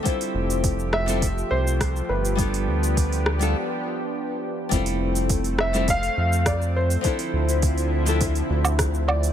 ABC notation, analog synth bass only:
X:1
M:4/4
L:1/8
Q:1/4=103
K:Flyd
V:1 name="Analog synth bass" clef=bass
z F,,,4 C,,2 G,,,- | G,,, D,,3 z4 | F,,,4- F,,, F,,3 | z D,,4 D,,3 |]